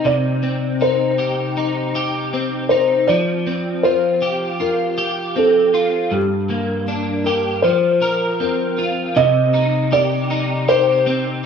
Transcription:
0.00 0.42 C4 medium
0.00 0.80 D#4 medium
0.00 1.18 G4 medium
0.05 3.08 C3 medium
0.05 0.77 D5 loud
0.43 2.33 C4 medium
0.81 1.56 D#4 medium
0.81 1.91 C5 medium
1.18 1.95 G4 medium
1.57 2.69 D#4 medium
1.95 3.87 G4 medium
2.33 3.46 C4 medium
2.69 3.16 D#4 medium
2.69 3.09 C5 medium
3.07 6.12 F3 medium
3.07 3.86 D5 loud
3.47 5.35 C4 medium
3.83 4.59 F4 medium
3.83 4.56 C5 medium
4.22 4.97 G4 medium
4.60 5.73 F4 medium
4.60 5.39 A#4 medium
4.98 6.19 G4 medium
5.36 6.20 C4 medium
5.36 6.15 A4 medium
5.74 6.20 F4 medium
6.11 7.71 G2 medium
6.11 6.84 G4 medium
6.50 7.71 A#3 medium
6.88 7.72 D4 medium
7.24 7.72 G4 medium
7.24 7.64 A#4 medium
7.62 9.23 F3 medium
7.62 8.73 C5 medium
8.02 9.23 A#4 medium
8.40 11.06 C4 medium
8.40 9.19 A#4 medium
8.78 9.24 F4 medium
9.16 11.46 C3 medium
9.16 9.94 D#5 loud
9.54 10.29 D#4 medium
9.92 10.68 G4 medium
9.92 10.71 D5 loud
10.30 11.43 D#4 medium
10.68 11.46 G4 medium
10.68 11.46 C5 loud
11.06 11.46 C4 medium

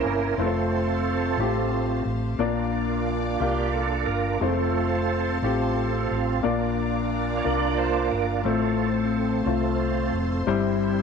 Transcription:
0.00 0.35 C3 soft
0.00 0.17 A#3 medium
0.00 0.35 A#3 soft
0.00 0.17 C#4 soft
0.00 0.35 C#4 soft
0.00 0.37 C#4 medium
0.00 0.17 E4 soft
0.00 0.35 E4 medium
0.00 0.17 C5 medium
0.00 0.36 E5 soft
0.00 0.37 A#5 soft
0.00 2.36 C6 medium
0.04 0.35 G1 medium
0.04 0.37 A#4 medium
0.37 1.35 F1 medium
0.37 1.17 A3 medium
0.37 1.38 A3 soft
0.37 1.17 C4 medium
0.37 1.36 C4 medium
0.37 1.18 F4 medium
0.37 1.40 F4 medium
0.37 0.45 B4 medium
0.37 2.38 C5 medium
0.37 4.37 F5 medium
0.37 2.38 A5 medium
0.42 1.44 A4 medium
0.46 1.21 C5 medium
1.37 2.01 A1 medium
1.37 2.18 A3 medium
1.37 1.71 A3 soft
1.37 1.72 C4 soft
1.37 2.18 C4 soft
1.37 2.18 F4 soft
1.37 1.72 F4 medium
1.37 2.19 G4 medium
1.73 2.03 A3 soft
1.73 2.03 C4 soft
1.73 2.03 F4 soft
2.05 2.37 A1 medium
2.37 3.36 A#1 medium
2.37 3.37 A#2 medium
2.37 3.19 A#3 medium
2.37 4.37 A#3 soft
2.37 3.19 D4 medium
2.37 4.38 D4 soft
2.37 3.19 F4 medium
2.37 4.38 F4 soft
2.37 4.39 D5 medium
2.37 3.19 D5 medium
2.37 4.38 D6 medium
3.40 4.04 C2 medium
3.40 4.20 A#3 soft
3.40 4.20 D4 soft
3.40 4.20 F4 soft
3.40 3.71 G4 medium
3.40 4.21 F5 medium
3.73 4.09 A4 medium
4.06 4.38 G1 medium
4.06 4.32 A#4 medium
4.33 4.41 A#4 medium
4.39 5.38 F1 medium
4.39 4.48 G#3 soft
4.39 4.86 A3 soft
4.39 5.38 C4 soft
4.39 5.21 C4 medium
4.39 5.39 F4 medium
4.39 5.21 F4 medium
4.39 5.38 A4 medium
4.39 6.40 C5 medium
4.39 5.21 C5 medium
4.39 10.43 F5 medium
4.39 6.40 A5 medium
4.39 6.40 C6 medium
4.48 5.24 A3 medium
5.42 6.06 A1 medium
5.42 6.22 A3 soft
5.42 6.40 C4 soft
5.42 6.22 C4 soft
5.42 6.40 F4 soft
5.42 6.22 F4 soft
5.42 6.23 G4 medium
5.42 6.15 A4 medium
6.11 6.41 A1 medium
6.43 7.41 A#1 medium
6.43 7.41 A#2 medium
6.43 7.23 A#3 medium
6.43 8.41 A#3 soft
6.43 7.23 D4 medium
6.43 8.42 D4 soft
6.43 7.23 F4 medium
6.43 8.42 F4 soft
6.43 7.23 D5 medium
6.43 8.45 D5 medium
6.43 8.45 A#5 medium
6.43 8.45 D6 medium
7.37 7.45 C#5 medium
7.42 8.08 C2 medium
7.42 8.24 A#3 soft
7.42 8.24 D4 soft
7.42 8.24 F4 soft
7.42 8.24 A#4 medium
7.42 7.78 D5 medium
7.78 8.09 C5 medium
8.11 8.43 G1 medium
8.11 8.27 A#4 medium
8.43 9.42 A1 medium
8.43 9.42 A2 medium
8.43 8.89 A3 soft
8.43 9.24 A3 medium
8.43 9.42 C4 medium
8.43 9.24 C4 medium
8.43 8.90 F4 medium
8.43 9.25 F4 medium
8.43 9.43 A4 medium
8.43 11.02 C5 medium
8.43 9.25 C5 medium
8.43 10.45 A5 medium
8.43 11.02 C6 medium
9.44 10.10 C2 medium
9.44 10.42 A3 soft
9.44 10.26 A3 medium
9.44 10.42 C4 soft
9.44 10.26 C4 soft
9.44 10.18 F4 medium
9.44 10.26 F4 soft
9.44 10.26 C5 medium
10.12 10.44 F1 medium
10.47 11.02 G1 medium
10.47 11.02 G2 medium
10.47 11.02 G3 medium
10.47 11.02 G3 soft
10.47 11.02 C4 medium
10.47 11.02 C4 soft
10.47 11.02 E4 soft
10.47 11.02 E4 medium
10.47 11.02 C5 medium
10.47 11.02 E5 medium
10.47 11.02 G5 medium

